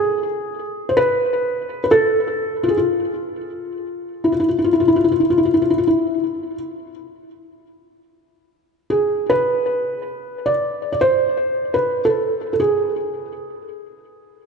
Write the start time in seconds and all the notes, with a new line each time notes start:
Already playing: G#4
0.89 C5
0.97 B4
1.84 B4
1.91 A4
2.63 F4
2.68 G#4
2.77 F4
4.24 E4
4.32 F4
4.40 E4
4.48 F4
4.59 E4
4.64 F4
4.73 E4
4.80 F4
4.88 E4
4.96 F4
5.04 E4
5.12 F4
5.20 E4
5.30 F4
5.38 E4
5.45 F4
5.54 E4
5.62 F4
5.70 E4
5.78 F4
5.87 E4
8.90 G#4
9.30 B4
10.46 D5
10.92 D5
11.01 C5
11.74 B4
12.05 A4
12.53 A4
12.60 G#4